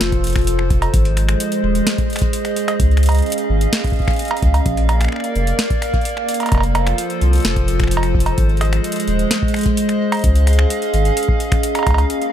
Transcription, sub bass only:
0.01 F1
0.94 G#1
1.63 D#1
2.80 C#2
3.49 G#1
4.42 C#2
4.66 A#1
5.35 F1
6.52 F1
7.21 C2
7.45 F1
8.38 G#1
9.08 D#1
10.24 C#2
10.94 G#1
11.87 C#2

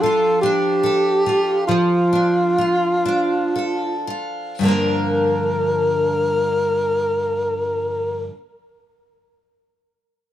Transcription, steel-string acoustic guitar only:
Already playing: F3 D4
0.03 F4
0.43 D4
0.83 A4
1.26 F4
1.68 F3
2.13 D4
2.58 F4
3.05 D4
3.56 A4
4.07 F4
4.59 G2 D3
4.63 F3 A#3 D4
4.68 A#4

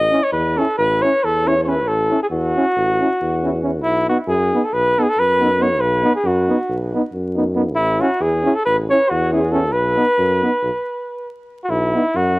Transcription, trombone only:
0.11 C#4
0.57 C#4
1.03 C#4
1.46 C#4
1.66 C#4
2.10 C#4
2.56 C#4
3.00 C#4
3.43 C#4
3.62 C#4
4.09 B3
4.54 B3
4.98 B3
5.40 B3
5.59 B3
6.03 B3
6.48 B3
6.94 B3
7.36 B3
7.55 B3
7.99 C#4
8.44 C#4
8.90 C#4
9.33 C#4
9.53 C#4
9.96 B3
10.42 B3
11.94 B3

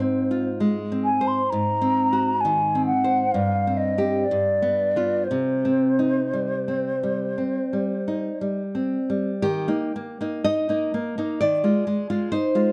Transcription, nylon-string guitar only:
Already playing: G#2
0.00 C4
0.31 F4
0.60 G#3
0.92 C4
1.21 C5
1.52 G#2
1.82 C4
2.13 F#4
2.45 D#3
2.75 C4
3.04 C5
3.34 G2
3.67 C4
3.98 C4 G4
4.31 G2
4.62 B3
4.96 B3 F4
5.31 C3
5.65 C4
5.99 D#4
6.33 G3
6.68 C4
7.03 G3
7.38 C4
7.73 G3
8.08 D#4
8.41 G3
8.75 C4
9.10 G3
9.42 D#3 G4
9.68 A#3 D#4
9.96 A#3
10.21 A#3 D#4
10.44 D#4 D#5
10.69 A#3 D#4
10.94 A#3
11.18 A#3 D#4
11.41 D#3 D5
11.64 G#3 F4
11.87 G#3
12.10 G#3 F4
12.32 D#4 C5
12.55 G#3 F4

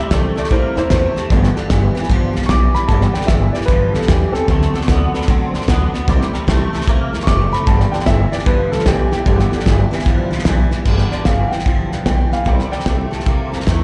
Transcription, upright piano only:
Already playing: G4
0.00 E5
0.11 A4 D5
0.37 A4 D5
0.52 E4 C5
0.77 E4 C5
0.91 C5
2.46 C#6 D6
2.75 B5
2.88 A5
3.13 G5
3.27 E5
3.53 D5
3.66 B4
3.94 A4
4.07 G4
4.32 C4 A4
7.23 C#6
7.27 D6
7.53 B5
7.67 A5
7.92 G5
8.07 E5
8.32 D5
8.47 B4
8.72 A4
8.87 G4
9.12 G4
11.12 D5
11.26 F5
11.47 F#5
11.51 G5
12.06 G5
12.33 F5
12.47 G5
12.71 D5 G5

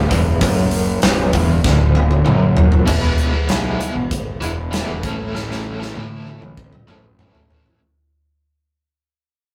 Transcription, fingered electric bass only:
0.11 E1
0.42 F#1
1.03 B0
1.34 E1
1.65 D1
2.26 F#1
2.88 E1
3.50 B1
3.96 G#1
4.43 E1
4.89 E1
5.03 A1
5.97 A2
6.43 A1
6.90 A1
7.35 A1

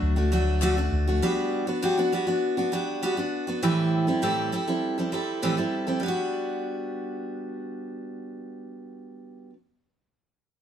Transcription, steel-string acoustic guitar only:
Already playing: F#3 A3 D4 F#4
0.16 A3 D4 F#4
0.32 F#3 A3 D4 F#4
0.62 D3 F#3 A3 D4 F#4
0.77 A3 D4 F#4
1.07 A3 D4 F#4
1.22 G3 B3 D4 F#4
1.67 B3 D4 F#4
1.82 G3 B3 D4 F#4
1.97 B3 D4 F#4
2.12 G3 B3 D4 F#4
2.27 B3 D4 F#4
2.57 B3 D4 F#4
2.72 G3 B3 D4 F#4
3.03 G3 B3 D4 F#4
3.17 B3 D4 F#4
3.47 B3 D4 F#4
3.62 A2 E3 G3 C4 E4 A4
4.07 G3 C4 E4 A4
4.22 A2 E3 G3 C4 E4 A4
4.52 G3 C4 E4 A4
4.67 G3 C4 E4 A4
4.98 G3 C4 E4 A4
5.12 G3 C4 E4 A4
5.42 A2 E3 G3 C4 E4 A4
5.57 G3 C4 E4 A4
5.87 G3 C4 E4 A4
6.00 G3 B3
6.06 D4 F#4

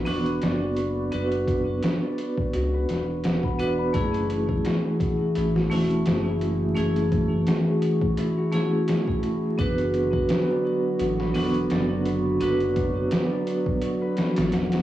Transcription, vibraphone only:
Already playing: B3 D4 F#4 B4
0.05 B3 D4 F#4 C#6
1.11 B3 D4 F#4 B4
3.59 B3 D4 F#4 B4
3.93 A3 C#4 E4 G#4
5.70 A3 C#4 E4
6.74 A3 C#4 E4 G#4
8.51 A3 C#4 E4 G#4
9.58 B3 D4 F#4 B4
11.34 B3 D4 F#4 C#6
12.40 B3 D4 F#4 B4

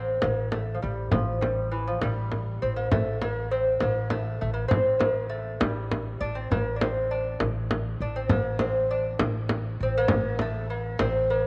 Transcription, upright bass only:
Already playing: A1
0.24 A1
0.84 A1
1.13 A1
2.02 A1
2.63 A1
2.93 A1
3.82 A1
4.42 A1
4.71 A1
5.62 A1
6.21 A1
6.51 A1
7.41 A1
8.00 A1
8.30 A1
9.21 A1
9.80 A1
10.10 A1
11.00 A1

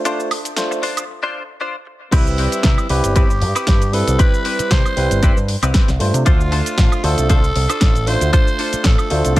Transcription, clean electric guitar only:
0.05 D4 F4 C5
0.31 muted clean electric guitar stroke
0.71 muted clean electric guitar stroke
0.83 D4 F4 C5
1.23 D4 F4 C5
1.61 D4 F4 C5
1.86 muted clean electric guitar stroke
2.12 C4 E4 G4 B4
2.38 C4 E4 G4 B4
3.16 C4 E4 G4 B4
3.42 muted clean electric guitar stroke
3.55 C4 E4 G4 B4
4.08 muted clean electric guitar stroke
4.19 C4 E4 G4 B4
4.45 C4 E4 G4 B4
5.23 C4 E4 G4 B4
5.49 muted clean electric guitar stroke
5.63 C4 E4 G4 B4
6.14 muted clean electric guitar stroke
6.26 D4 F4 A4 C5
6.52 D4 F4 A4 C5
7.29 D4 F4 A4 C5
7.56 muted clean electric guitar stroke
7.69 D4 F4 A4 C5
8.21 muted clean electric guitar stroke
8.33 D4 F4 A4 C5
8.59 D4 F4 A4 C5
9.36 D4

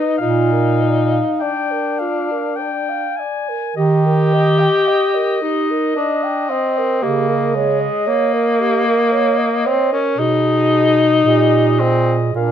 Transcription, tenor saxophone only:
Already playing: D#4
0.21 D#4
1.41 D4
3.76 G4
5.41 D#4
5.96 D4
6.50 C4
7.03 A#3
7.55 G#3
8.08 A#3
9.66 C4
9.93 C#4
10.19 D#4
11.80 C4
12.35 D4

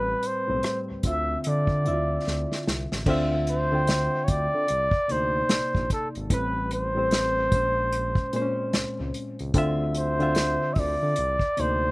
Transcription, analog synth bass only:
Already playing: A1
0.49 B1
0.90 D2
1.05 D2
1.47 D3
1.87 D2
2.27 D2
2.68 C2
2.93 A1
3.07 D2
4.29 D2
4.55 D3
4.70 C2
4.93 D2
5.11 D2
5.52 A#1
5.76 A#1
6.16 G#1
6.31 A1
7.53 A#1
8.75 C#2
9.00 C#2
9.40 C#2
9.55 D2
10.77 D2
11.02 D3
11.18 C2
11.40 D2
11.59 D2

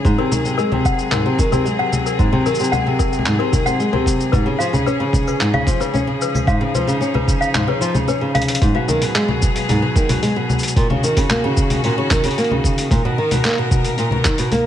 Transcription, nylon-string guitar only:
0.05 G#2
0.18 C3
0.32 D#3
0.45 C3
0.58 G#3
0.72 C3
1.13 G#2
1.26 C3
1.39 D#3
1.52 C3
1.65 G#3
1.79 C3
2.19 G#2
2.33 C3
2.46 D#3
2.60 C3
2.73 G#3
2.87 C3
3.26 G#2
3.40 C3
3.53 D#3
3.66 C3
3.80 G#3
3.93 C3
4.33 G#2
4.46 C#3
4.60 F3
4.73 C#3
4.86 C#4
5.00 C#3
5.40 G#2
5.54 C#3
5.67 F3
5.80 C#3
5.94 C#4
6.07 C#3
6.48 G#2
6.61 C#3
6.74 F3
6.87 C#3
7.01 C#4
7.14 C#3
7.54 G#2
7.67 C#3
7.81 F3
7.95 C#3
8.08 C#4
8.21 C#3
8.61 G#2
8.75 B2
8.88 D#3
9.02 B2
9.15 G#3
9.29 B2
9.69 G#2
9.82 B2
9.96 D#3
10.09 B2
10.23 G#3
10.36 B2
10.77 A#2
10.90 C#3
11.04 D#3
11.17 C#3
11.30 A#3
11.44 C#3
11.85 A#2
11.98 C#3
12.11 D#3
12.25 C#3
12.38 A#3
12.51 C#3
12.92 A#2
13.05 B2
13.18 D#3
13.32 B2
13.45 A#3
13.59 B2
13.99 A#2
14.12 B2
14.25 D#3
14.39 B2
14.52 A#3

